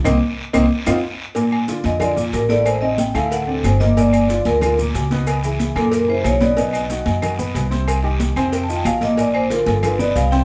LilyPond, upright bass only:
\new Staff \with { instrumentName = "Upright bass" } { \clef bass \time 4/4 \key bes \major \tempo 4 = 184 c,8 r4 c,8 r8 f,8 r4 | r4. f,4. a,,4~ | a,,4. d,4. g,,4~ | g,,4. d,4. des,4~ |
des,4. ges,4. ces,4~ | ces,4. fis,4. c,4~ | c,4. f,4. bes,,4~ | bes,,4. g,,4. c,4 | }